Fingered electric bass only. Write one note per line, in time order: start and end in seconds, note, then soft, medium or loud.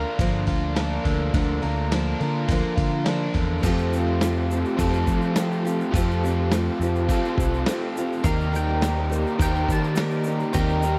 0.19 0.44 G1 medium
0.47 0.97 D2 medium
1.05 1.30 D2 medium
1.34 1.59 D2 loud
1.64 2.13 D2 medium
2.20 2.45 D3 medium
2.48 2.61 D2 medium
2.78 3.28 D3 medium
3.35 3.60 E2 loud
3.63 4.63 F2 medium
4.78 5.04 F2 medium
5.07 5.82 F3 medium
5.94 6.68 F2 loud
6.79 7.10 F2 medium
7.09 7.21 F3 loud
7.37 7.62 C2 medium
8.24 9.24 D#2 medium
9.40 9.64 D#2 medium
9.68 10.43 D#3 medium
10.54 10.99 D#2 loud